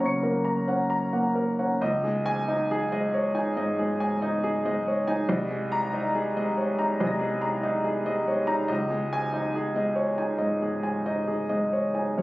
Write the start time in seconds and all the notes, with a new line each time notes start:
Already playing: F#2 A#3 C#4 A#4 F#5
0.00 C#3 C#5 A#5 C#6
0.06 C#7
0.23 A#3 A#4
0.45 A#5
0.67 C#4 F#5
0.90 A#5
1.13 A#3 F#5
1.35 A#4
1.59 C#4 F#5
1.81 C#2 D#5
2.04 G#3 G#4
2.26 G#5
2.48 D#4 D#5
2.71 G#4
2.92 G#3 D#5
3.14 C#5
3.34 D#4 G#5
3.57 G#2 D#5
3.79 G#3 G#4
4.00 G#5
4.22 D#4 D#5
4.44 G#4
4.65 G#3 D#5
4.88 C#5
5.08 D#4 G#5
5.29 C2 D#5
5.50 G#3 G#4
5.72 A#5
5.94 D#4 D#5
6.15 G#4
6.36 G#3 D#5
6.57 C#5
6.78 D#4 A#5
7.00 C2 D#5 G#5 D#6
7.07 A#6
7.20 G#3 G#4
7.42 A#5
7.63 D#4 D#5
7.84 G#4
8.06 G#3 D#5
8.27 C#5
8.47 D#4 A#5
8.68 C#2 D#5
8.90 G#3 G#4
9.13 G#5
9.33 D#4 D#5
9.55 G#4
9.76 G#3 D#5
9.95 C#5
10.18 D#4 G#5
10.38 G#2 D#5
10.62 G#3 G#4
10.83 G#5
11.06 D#4 D#5
11.28 G#4
11.49 G#3 D#5
11.73 C#5
11.95 D#4 G#5
12.18 F#2 C#5